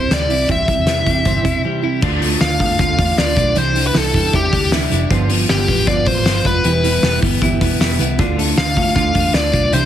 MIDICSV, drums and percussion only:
0, 0, Header, 1, 2, 480
1, 0, Start_track
1, 0, Tempo, 385356
1, 612, Time_signature, 4, 2, 24, 8
1, 12274, End_track
2, 0, Start_track
2, 0, Title_t, "Drums"
2, 137, Note_on_c, 9, 42, 84
2, 139, Note_on_c, 9, 38, 107
2, 261, Note_off_c, 9, 42, 0
2, 264, Note_off_c, 9, 38, 0
2, 373, Note_on_c, 9, 46, 63
2, 497, Note_off_c, 9, 46, 0
2, 610, Note_on_c, 9, 36, 101
2, 613, Note_on_c, 9, 42, 89
2, 735, Note_off_c, 9, 36, 0
2, 737, Note_off_c, 9, 42, 0
2, 848, Note_on_c, 9, 36, 93
2, 851, Note_on_c, 9, 42, 76
2, 972, Note_off_c, 9, 36, 0
2, 976, Note_off_c, 9, 42, 0
2, 1080, Note_on_c, 9, 38, 126
2, 1081, Note_on_c, 9, 42, 89
2, 1205, Note_off_c, 9, 38, 0
2, 1205, Note_off_c, 9, 42, 0
2, 1326, Note_on_c, 9, 36, 84
2, 1331, Note_on_c, 9, 42, 72
2, 1451, Note_off_c, 9, 36, 0
2, 1456, Note_off_c, 9, 42, 0
2, 1559, Note_on_c, 9, 42, 84
2, 1564, Note_on_c, 9, 36, 100
2, 1684, Note_off_c, 9, 42, 0
2, 1689, Note_off_c, 9, 36, 0
2, 1804, Note_on_c, 9, 36, 91
2, 1805, Note_on_c, 9, 42, 78
2, 1929, Note_off_c, 9, 36, 0
2, 1929, Note_off_c, 9, 42, 0
2, 2522, Note_on_c, 9, 36, 112
2, 2523, Note_on_c, 9, 49, 90
2, 2647, Note_off_c, 9, 36, 0
2, 2648, Note_off_c, 9, 49, 0
2, 2762, Note_on_c, 9, 44, 60
2, 2764, Note_on_c, 9, 46, 82
2, 2887, Note_off_c, 9, 44, 0
2, 2889, Note_off_c, 9, 46, 0
2, 2998, Note_on_c, 9, 44, 70
2, 2999, Note_on_c, 9, 38, 115
2, 2999, Note_on_c, 9, 46, 98
2, 3122, Note_off_c, 9, 44, 0
2, 3123, Note_off_c, 9, 38, 0
2, 3123, Note_off_c, 9, 46, 0
2, 3236, Note_on_c, 9, 44, 66
2, 3239, Note_on_c, 9, 46, 73
2, 3240, Note_on_c, 9, 36, 96
2, 3360, Note_off_c, 9, 44, 0
2, 3363, Note_off_c, 9, 46, 0
2, 3364, Note_off_c, 9, 36, 0
2, 3474, Note_on_c, 9, 46, 90
2, 3478, Note_on_c, 9, 36, 99
2, 3480, Note_on_c, 9, 44, 68
2, 3599, Note_off_c, 9, 46, 0
2, 3603, Note_off_c, 9, 36, 0
2, 3604, Note_off_c, 9, 44, 0
2, 3719, Note_on_c, 9, 44, 63
2, 3720, Note_on_c, 9, 36, 96
2, 3721, Note_on_c, 9, 46, 80
2, 3844, Note_off_c, 9, 36, 0
2, 3844, Note_off_c, 9, 44, 0
2, 3845, Note_off_c, 9, 46, 0
2, 3960, Note_on_c, 9, 44, 62
2, 3961, Note_on_c, 9, 46, 83
2, 3964, Note_on_c, 9, 38, 109
2, 4085, Note_off_c, 9, 44, 0
2, 4086, Note_off_c, 9, 46, 0
2, 4089, Note_off_c, 9, 38, 0
2, 4190, Note_on_c, 9, 44, 68
2, 4190, Note_on_c, 9, 46, 65
2, 4194, Note_on_c, 9, 36, 88
2, 4314, Note_off_c, 9, 44, 0
2, 4314, Note_off_c, 9, 46, 0
2, 4319, Note_off_c, 9, 36, 0
2, 4430, Note_on_c, 9, 44, 62
2, 4430, Note_on_c, 9, 46, 93
2, 4555, Note_off_c, 9, 44, 0
2, 4555, Note_off_c, 9, 46, 0
2, 4674, Note_on_c, 9, 44, 62
2, 4677, Note_on_c, 9, 46, 78
2, 4799, Note_off_c, 9, 44, 0
2, 4801, Note_off_c, 9, 46, 0
2, 4914, Note_on_c, 9, 44, 69
2, 4915, Note_on_c, 9, 38, 122
2, 4915, Note_on_c, 9, 46, 104
2, 5039, Note_off_c, 9, 44, 0
2, 5040, Note_off_c, 9, 38, 0
2, 5040, Note_off_c, 9, 46, 0
2, 5160, Note_on_c, 9, 36, 86
2, 5161, Note_on_c, 9, 44, 66
2, 5164, Note_on_c, 9, 46, 79
2, 5285, Note_off_c, 9, 36, 0
2, 5285, Note_off_c, 9, 44, 0
2, 5288, Note_off_c, 9, 46, 0
2, 5394, Note_on_c, 9, 46, 88
2, 5400, Note_on_c, 9, 36, 94
2, 5400, Note_on_c, 9, 44, 69
2, 5518, Note_off_c, 9, 46, 0
2, 5524, Note_off_c, 9, 36, 0
2, 5524, Note_off_c, 9, 44, 0
2, 5638, Note_on_c, 9, 44, 63
2, 5639, Note_on_c, 9, 46, 89
2, 5640, Note_on_c, 9, 36, 93
2, 5762, Note_off_c, 9, 44, 0
2, 5763, Note_off_c, 9, 46, 0
2, 5764, Note_off_c, 9, 36, 0
2, 5878, Note_on_c, 9, 44, 62
2, 5879, Note_on_c, 9, 46, 86
2, 5882, Note_on_c, 9, 38, 108
2, 6002, Note_off_c, 9, 44, 0
2, 6003, Note_off_c, 9, 46, 0
2, 6006, Note_off_c, 9, 38, 0
2, 6122, Note_on_c, 9, 46, 71
2, 6123, Note_on_c, 9, 44, 62
2, 6247, Note_off_c, 9, 44, 0
2, 6247, Note_off_c, 9, 46, 0
2, 6359, Note_on_c, 9, 36, 110
2, 6359, Note_on_c, 9, 44, 58
2, 6359, Note_on_c, 9, 46, 92
2, 6484, Note_off_c, 9, 36, 0
2, 6484, Note_off_c, 9, 44, 0
2, 6484, Note_off_c, 9, 46, 0
2, 6594, Note_on_c, 9, 44, 63
2, 6596, Note_on_c, 9, 46, 83
2, 6718, Note_off_c, 9, 44, 0
2, 6721, Note_off_c, 9, 46, 0
2, 6843, Note_on_c, 9, 44, 66
2, 6844, Note_on_c, 9, 38, 119
2, 6844, Note_on_c, 9, 46, 100
2, 6967, Note_off_c, 9, 44, 0
2, 6968, Note_off_c, 9, 38, 0
2, 6968, Note_off_c, 9, 46, 0
2, 7079, Note_on_c, 9, 44, 64
2, 7080, Note_on_c, 9, 36, 92
2, 7082, Note_on_c, 9, 46, 70
2, 7204, Note_off_c, 9, 36, 0
2, 7204, Note_off_c, 9, 44, 0
2, 7207, Note_off_c, 9, 46, 0
2, 7311, Note_on_c, 9, 46, 85
2, 7316, Note_on_c, 9, 36, 102
2, 7317, Note_on_c, 9, 44, 71
2, 7435, Note_off_c, 9, 46, 0
2, 7440, Note_off_c, 9, 36, 0
2, 7441, Note_off_c, 9, 44, 0
2, 7547, Note_on_c, 9, 44, 64
2, 7548, Note_on_c, 9, 46, 81
2, 7556, Note_on_c, 9, 36, 91
2, 7671, Note_off_c, 9, 44, 0
2, 7673, Note_off_c, 9, 46, 0
2, 7680, Note_off_c, 9, 36, 0
2, 7791, Note_on_c, 9, 44, 60
2, 7792, Note_on_c, 9, 46, 88
2, 7795, Note_on_c, 9, 38, 119
2, 7916, Note_off_c, 9, 44, 0
2, 7917, Note_off_c, 9, 46, 0
2, 7920, Note_off_c, 9, 38, 0
2, 8034, Note_on_c, 9, 36, 87
2, 8036, Note_on_c, 9, 44, 66
2, 8036, Note_on_c, 9, 46, 66
2, 8158, Note_off_c, 9, 36, 0
2, 8161, Note_off_c, 9, 44, 0
2, 8161, Note_off_c, 9, 46, 0
2, 8271, Note_on_c, 9, 44, 66
2, 8271, Note_on_c, 9, 46, 90
2, 8395, Note_off_c, 9, 46, 0
2, 8396, Note_off_c, 9, 44, 0
2, 8520, Note_on_c, 9, 44, 67
2, 8522, Note_on_c, 9, 46, 78
2, 8644, Note_off_c, 9, 44, 0
2, 8647, Note_off_c, 9, 46, 0
2, 8756, Note_on_c, 9, 44, 70
2, 8757, Note_on_c, 9, 38, 119
2, 8757, Note_on_c, 9, 46, 95
2, 8881, Note_off_c, 9, 44, 0
2, 8882, Note_off_c, 9, 38, 0
2, 8882, Note_off_c, 9, 46, 0
2, 8998, Note_on_c, 9, 44, 65
2, 9000, Note_on_c, 9, 36, 86
2, 9001, Note_on_c, 9, 46, 76
2, 9122, Note_off_c, 9, 44, 0
2, 9125, Note_off_c, 9, 36, 0
2, 9125, Note_off_c, 9, 46, 0
2, 9240, Note_on_c, 9, 36, 91
2, 9240, Note_on_c, 9, 46, 82
2, 9245, Note_on_c, 9, 44, 67
2, 9364, Note_off_c, 9, 36, 0
2, 9364, Note_off_c, 9, 46, 0
2, 9370, Note_off_c, 9, 44, 0
2, 9479, Note_on_c, 9, 44, 67
2, 9480, Note_on_c, 9, 46, 83
2, 9482, Note_on_c, 9, 36, 101
2, 9604, Note_off_c, 9, 44, 0
2, 9605, Note_off_c, 9, 46, 0
2, 9606, Note_off_c, 9, 36, 0
2, 9724, Note_on_c, 9, 44, 62
2, 9725, Note_on_c, 9, 46, 85
2, 9728, Note_on_c, 9, 38, 107
2, 9848, Note_off_c, 9, 44, 0
2, 9849, Note_off_c, 9, 46, 0
2, 9852, Note_off_c, 9, 38, 0
2, 9966, Note_on_c, 9, 44, 71
2, 9966, Note_on_c, 9, 46, 69
2, 10091, Note_off_c, 9, 44, 0
2, 10091, Note_off_c, 9, 46, 0
2, 10195, Note_on_c, 9, 46, 81
2, 10196, Note_on_c, 9, 44, 60
2, 10201, Note_on_c, 9, 36, 109
2, 10320, Note_off_c, 9, 44, 0
2, 10320, Note_off_c, 9, 46, 0
2, 10326, Note_off_c, 9, 36, 0
2, 10448, Note_on_c, 9, 44, 64
2, 10451, Note_on_c, 9, 46, 81
2, 10573, Note_off_c, 9, 44, 0
2, 10575, Note_off_c, 9, 46, 0
2, 10681, Note_on_c, 9, 44, 67
2, 10682, Note_on_c, 9, 38, 127
2, 10682, Note_on_c, 9, 46, 93
2, 10805, Note_off_c, 9, 44, 0
2, 10806, Note_off_c, 9, 38, 0
2, 10807, Note_off_c, 9, 46, 0
2, 10916, Note_on_c, 9, 44, 67
2, 10919, Note_on_c, 9, 46, 72
2, 10921, Note_on_c, 9, 36, 92
2, 11041, Note_off_c, 9, 44, 0
2, 11044, Note_off_c, 9, 46, 0
2, 11046, Note_off_c, 9, 36, 0
2, 11152, Note_on_c, 9, 46, 85
2, 11158, Note_on_c, 9, 36, 91
2, 11158, Note_on_c, 9, 44, 71
2, 11277, Note_off_c, 9, 46, 0
2, 11283, Note_off_c, 9, 36, 0
2, 11283, Note_off_c, 9, 44, 0
2, 11391, Note_on_c, 9, 44, 65
2, 11392, Note_on_c, 9, 46, 80
2, 11399, Note_on_c, 9, 36, 89
2, 11515, Note_off_c, 9, 44, 0
2, 11517, Note_off_c, 9, 46, 0
2, 11523, Note_off_c, 9, 36, 0
2, 11633, Note_on_c, 9, 44, 64
2, 11634, Note_on_c, 9, 46, 86
2, 11637, Note_on_c, 9, 38, 113
2, 11757, Note_off_c, 9, 44, 0
2, 11759, Note_off_c, 9, 46, 0
2, 11761, Note_off_c, 9, 38, 0
2, 11877, Note_on_c, 9, 36, 89
2, 11879, Note_on_c, 9, 44, 67
2, 11879, Note_on_c, 9, 46, 70
2, 12002, Note_off_c, 9, 36, 0
2, 12003, Note_off_c, 9, 44, 0
2, 12003, Note_off_c, 9, 46, 0
2, 12114, Note_on_c, 9, 44, 65
2, 12114, Note_on_c, 9, 46, 91
2, 12239, Note_off_c, 9, 44, 0
2, 12239, Note_off_c, 9, 46, 0
2, 12274, End_track
0, 0, End_of_file